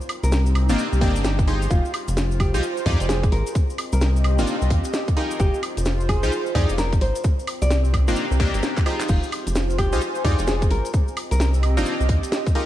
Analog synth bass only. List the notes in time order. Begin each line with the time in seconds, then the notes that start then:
0.23 C2
0.69 G1
0.93 C2
1.01 G1
1.71 F1
2.08 F1
2.54 C2
2.86 F2
3.00 F1
3.32 G#1
3.93 C2
4.39 G1
4.62 C2
4.71 D#2
5.40 F1
5.77 F1
6.23 C2
6.55 F2
6.69 F1
7.01 G#1
7.62 C2
8.08 G1
8.31 C2
8.54 G1
9.09 F1
9.47 F1
9.93 C2
10.25 F2
10.39 F1
10.71 G#1
11.31 C2
11.77 G1
12.00 C2
12.09 D#2